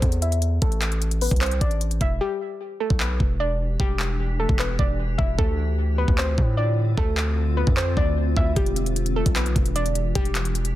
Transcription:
Already playing: C5
0.02 E2, kick, closed hi-hat
0.12 closed hi-hat
0.22 E5, closed hi-hat
0.32 closed hi-hat
0.42 closed hi-hat
0.62 A1 A4, kick, closed hi-hat
0.72 closed hi-hat
0.82 clap, closed hi-hat
0.92 closed hi-hat
1.02 closed hi-hat
1.11 closed hi-hat
1.21 B4, open hi-hat
1.31 C2, kick, closed hi-hat
1.36 closed hi-hat
1.41 C5, clap, closed hi-hat
1.46 closed hi-hat
1.51 closed hi-hat
1.61 A1 D5, kick, closed hi-hat
1.71 closed hi-hat
1.81 closed hi-hat
1.91 closed hi-hat
2.01 E1 E5, kick, closed hi-hat
2.21 E3 D4 G4
2.80 A4
2.90 B1, kick
3.00 B4, clap
3.20 E1, kick
3.40 D5
3.80 E1 G4, kick
4.00 clap
4.40 A4
4.49 E1, kick
4.59 B4, clap
4.79 E1 D5, kick
5.18 E1 E5, kick
5.38 D2 D3 C4 F4 A4, kick
5.98 B4
6.08 D2, kick
6.18 C5, clap
6.38 A2, kick
6.57 D5
6.98 D2 A4, kick
7.17 clap
7.57 B4
7.67 F2, kick
7.77 C5, clap
7.97 D2 D5, kick
8.37 D2 E5, kick
8.56 E1 E3 D4 G4, kick, closed hi-hat
8.66 closed hi-hat
8.76 closed hi-hat
8.86 closed hi-hat
8.96 closed hi-hat
9.06 closed hi-hat
9.16 A4
9.26 B1, kick, closed hi-hat
9.36 B4, clap, closed hi-hat
9.46 closed hi-hat
9.56 E1, kick, closed hi-hat
9.66 closed hi-hat
9.76 D5, closed hi-hat
9.86 closed hi-hat
9.95 closed hi-hat
10.15 E1 G4, kick, closed hi-hat
10.25 closed hi-hat
10.35 clap, closed hi-hat
10.45 closed hi-hat
10.55 closed hi-hat
10.65 closed hi-hat

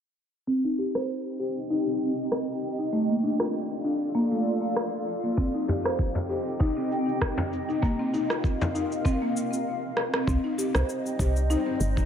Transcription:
0.47 C4 D#4 G4 D#5 G5, cabasa
0.64 D#4
0.79 G4, cabasa
0.95 C5, cross-stick
1.10 cabasa
1.27 cabasa
1.39 G4, cabasa
1.57 cabasa
1.70 D#4, cabasa
1.87 C4
2.02 cabasa
2.19 cabasa
2.32 cross-stick, cabasa
2.63 cabasa
2.79 D#4, cabasa
2.92 A3 F4 A4 D5 F5, cabasa
3.09 A#3
3.23 D4, cabasa
3.40 F4, cross-stick, cabasa
3.55 cabasa
3.71 cabasa
3.84 D4, cabasa
4.02 cabasa
4.15 A#3, cabasa
4.32 A3
4.47 cabasa
4.63 cabasa
4.76 cross-stick, cabasa
5.08 cabasa
5.23 A#3, cabasa
5.37 C4 D#4 G4 D#5 G5, kick, cabasa
5.54 D#4
5.68 G4, frame drum, cabasa
5.85 C5, cross-stick, cabasa
5.99 kick, cabasa
6.15 frame drum, cabasa
6.29 G4, cabasa
6.48 cabasa
6.60 D#4, kick, cabasa
6.77 C4
6.92 cabasa
7.09 cabasa
7.21 kick, cross-stick, cabasa
7.38 frame drum
7.53 cabasa
7.69 D#4, cabasa
7.82 A#3 F4 A#4 F5, kick, cabasa
7.99 C4
8.14 D#4, cabasa
8.30 F4, cross-stick, cabasa
8.44 kick, cabasa
8.61 frame drum, cabasa
8.75 D#4, cabasa
8.92 cabasa
9.05 C4, kick, cabasa
9.22 A#3
9.37 cabasa
9.53 cabasa
9.97 cross-stick
10.14 C4, cross-stick
10.27 C2 G3 C4 D#4 C5 D#5, kick, cabasa
10.44 D#4
10.58 G4, cabasa
10.75 C2 C5, cross-stick, cabasa
10.89 cabasa
11.06 cabasa
11.19 C2 G4, kick, cabasa
11.36 cabasa
11.50 D#4, cabasa
11.66 C4
11.80 G1, cabasa
11.97 kick, cabasa

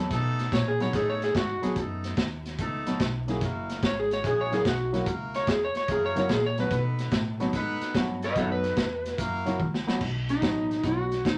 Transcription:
0.10 B2 A3 B3 D#4 A4, kick, snare, closed hi-hat
0.39 snare, closed hi-hat
0.52 A#2 C#5, kick, snare, closed hi-hat
0.68 G#4
0.80 F#3 A3 B3 D#4 F#4 C#5, snare, closed hi-hat
0.93 A2 A3 B3 D#4 G#4 A4, kick, snare, closed hi-hat
1.10 C#5
1.22 G#4, snare, closed hi-hat
1.35 G#2 F#4, kick, snare, closed hi-hat
1.62 F#3 A3 B3 D#4 G#4, muted upright bass stroke, snare, closed hi-hat
1.76 F#2 A3 B3 D#4 A4, kick, closed hi-hat
2.04 snare, closed hi-hat
2.17 D#2, kick, snare, closed hi-hat
2.46 snare, closed hi-hat
2.58 C#2 A3 B3 D#4 A4, kick, closed hi-hat
2.86 F#3 A3 B3 D#4 F#4, snare, closed hi-hat
3.00 B1, kick, snare, closed hi-hat
3.28 F#3 A#3 C#4 E4 G#4, snare, closed hi-hat
3.41 F#1 A#3 E4 F#4 A#4, kick, snare, closed hi-hat
3.70 snare, closed hi-hat
3.83 G#1 C#5, kick, snare, closed hi-hat
4.00 G#4
4.11 C#5, snare, closed hi-hat
4.24 A#1 G#3 E4 F#4 G#4, kick, closed hi-hat
4.41 C#5
4.51 F#3 A#3 C#4 E4 F#4 G#4, snare, closed hi-hat
4.65 B1 F#4, kick, snare, closed hi-hat
4.92 F#3 A#3 C#4 E4 F#4, snare, closed hi-hat
5.06 C#2 A#3 E4 F#4 A#4, kick, closed hi-hat
5.34 C#5, snare, closed hi-hat
5.47 E2 G#4, kick, snare, closed hi-hat
5.64 C#5
5.75 C#5, muted upright bass stroke, snare, closed hi-hat
5.88 F#2 A#3 E4 F#4 A#4, kick, closed hi-hat
5.92 G#4
6.06 C#5
6.16 F#3 A#3 C#4 E4 F#4 C#5, snare, closed hi-hat
6.29 A#2 G#4, kick, snare, closed hi-hat
6.46 C#5
6.58 F#3 A3 B3 D#4 F#4 B4, snare, closed hi-hat
6.70 B2 B3 D#4 A4 B4, kick, snare, closed hi-hat
6.99 snare, closed hi-hat
7.11 A2, kick, snare, closed hi-hat
7.40 F#3 A3 B3 D#4 F#4, snare, closed hi-hat
7.53 G#2 B3 D#4 A4 B4, kick, snare, closed hi-hat
7.81 muted upright bass stroke, snare, closed hi-hat
7.94 G2 F#3 A3 B3 D#4 F#4, kick, snare, closed hi-hat
8.22 B4 D#5, snare, closed hi-hat
8.35 F#2 F#3 A3 B3 D#4 F#4 A4 B4 C#5, kick, snare, closed hi-hat
8.52 B4
8.64 snare, closed hi-hat
8.77 E2, kick, snare, closed hi-hat
9.06 snare, closed hi-hat
9.18 F#2 A#3 E4 F#4 A#4, kick, closed hi-hat
9.46 F#3 A#3 C#4 E4 F#4, snare, closed hi-hat
9.60 C#2, kick, high tom
9.74 snare
9.87 F#3 A3 B3 D#4 F#4, snare
10.01 B1, kick, snare, crash
10.29 D#4, snare, closed hi-hat
10.41 F#3 A3 B3 D#4 F#4, kick, snare, closed hi-hat
10.71 snare, closed hi-hat
10.83 B1 F#3 A3 B3 D#4 F#4, kick, snare, closed hi-hat
11.12 snare, closed hi-hat
11.25 D#2 D#4, kick, snare, closed hi-hat

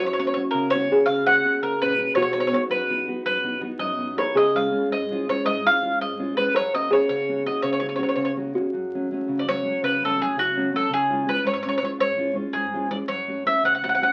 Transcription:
Already playing: F#4
0.00 F#2
0.06 C#5
0.13 C#5
0.18 A#3 C#4 F#4 C#5
0.27 C#5
0.34 A#3 C#4 F#4 C#5
0.51 C#3 A#4
0.70 A#3 C#4 C#5
0.75 F#4
0.90 A#3 C#4 F#4 G#4
1.06 C#3 F5
1.26 A#3 C#4 F#4 F#5
1.44 A#3 C#4 F#4
1.61 C#3 A#4
1.81 A#2 C#4 F#4 B4
1.97 A#3 C#4 F#4
2.15 B2 F#4 C#5
2.22 C#5
2.33 B3 D#4 F#4 C#5
2.40 C#5
2.47 C#5
2.52 B3 D#4 F#4 C#5
2.69 F#2 B4
2.89 B3 D#4 F#4
3.07 B3 D#4 F#4
3.25 F#2 B4
3.44 B3 D#4 F#4
3.60 B3 D#4 F#4
3.79 F#2 D#5
3.98 B3 D#4 F#4
4.17 B3 D#4 F#4 A#4 C#5
4.34 C#3 G#4 D#5
4.54 G#3 C#4 F4 F5
4.71 G#3 C#4 F4
4.89 G#2 D#5
5.10 G#3 C#4 F4
5.28 G#3 C#4 F4 C#5
5.45 G#2 D#5
5.64 G#3 C#4 F4 F5
5.82 G#3 C#4 F4
6.00 G#2 D#5
6.19 G#3 C#4 F4
6.37 G#3 C#4 F4 B4
6.55 F#2 A#4 C#5
6.74 A#3 C#4 F#4 D#5
6.90 A#3 C#4 F#4 G#4 C#5
7.09 C#3 C#5
7.29 A#3 C#4 F#4
7.45 A#3 C#4 F#4 D#5
7.62 C#3 C#5
7.73 C#5
7.80 A#3 C#4 F#4 C#5
7.89 C#5
7.96 A#3 C#4 F#4 C#5
8.03 C#5
8.09 C#5
8.16 C#3 C#5
8.25 C#5
8.36 A#3 C#4 F#4
8.54 A#3 C#4 F#4
8.73 F#2
8.94 F#3 A3 C#4
9.11 F#3 A3 C#4
9.28 C#3
9.39 D5
9.47 F#3 A3 C#4 C#5
9.64 F#3 A3 C#4
9.82 C#3 B4
10.02 F#3 A3 C#4 A4
10.19 F#3 A3 C#4 G#4
10.36 C#3 F#4
10.56 F#3 A3 C#4
10.73 F#3 A3 C#4 A4
10.89 C#3
10.94 G#4
11.09 G#3 C#4 F4
11.26 G#3 C#4 F4 B4
11.44 G#2 C#5
11.54 C#5
11.63 G#3 C#4 F4 C#5
11.69 C#5
11.78 G#3 F4 C#5
11.82 C#4 C#5
11.98 G#2 C#5
12.16 G#3 C#4 F4
12.34 G#3 C#4 F4
12.53 G#2 G#4
12.73 G#3 C#4 F4
12.90 G#3 C#4 F4 D5
13.08 F#2 C#5
13.27 A3 C#4 F#4
13.46 A3 C#4 F#4 E5
13.62 C#3 F#5
13.75 F#5
13.82 A3 C#4 F#4 F#5
13.89 F#5
13.95 F#5
14.00 A3 C#4 F#4 F#5

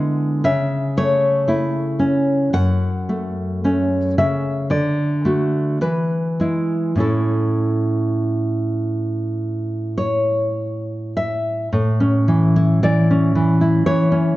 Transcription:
Already playing: D3 G#3 B3 E4 F#5
0.44 C#3 E5
0.97 A3 C#5
1.48 A3 E4
1.99 C#4
2.53 F#2 F#5
3.09 A3
3.64 A3 C#4
4.18 C#3 E5
4.70 D3 D5
5.25 A3 F#4
5.81 E3 B4
6.40 G#3 E4
6.96 A2 C#4 E4
7.00 A4
9.98 C#5
11.17 E5
11.72 A2
12.00 C#4
12.28 E3
12.56 E4
12.83 E3 D5
13.11 C#4
13.35 E3
13.61 E4
13.86 E3 C#5
14.12 C#4

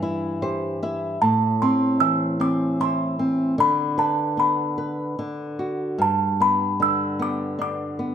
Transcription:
Already playing: G2 E3 G5
0.02 E4
0.42 G4 C5
0.83 E4 E5
1.22 A2 A5
1.62 C4 C6
2.00 E3 E6
2.40 C4 D6
2.80 E4 C6
3.19 C4
3.58 D3 B5
3.98 B4 A5
4.37 B3 B5
4.78 B4
5.19 D3
5.59 F#4
5.98 G2 A5
6.40 B3 B5
6.80 D3 E6
7.19 B3 D6
7.59 D4 D6
7.99 B3

